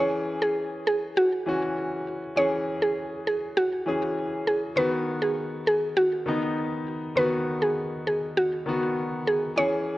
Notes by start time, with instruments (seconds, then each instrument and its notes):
Already playing: grand piano E3 C#4
0.00 grand piano G#4
0.42 synth pluck G#4
0.87 synth pluck G#4
1.17 synth pluck F#4
1.46 grand piano E3 C#4 F#4
2.36 grand piano E3 C#4 G#4, synth pluck C#5
2.82 synth pluck G#4
3.27 synth pluck G#4
3.57 synth pluck F#4
3.86 grand piano E3 C#4 G#4
4.47 synth pluck G#4
4.76 grand piano D#3 B3 F#4, synth pluck B4
5.22 synth pluck G#4
5.67 synth pluck G#4
5.97 synth pluck F#4
6.26 grand piano D#3 B3 D#4
7.16 grand piano D#3 B3 F#4, synth pluck B4
7.62 synth pluck G#4
8.07 synth pluck G#4
8.37 synth pluck F#4
8.66 grand piano D#3 B3 F#4
9.27 synth pluck G#4
9.56 grand piano E3 C#4 G#4, synth pluck C#5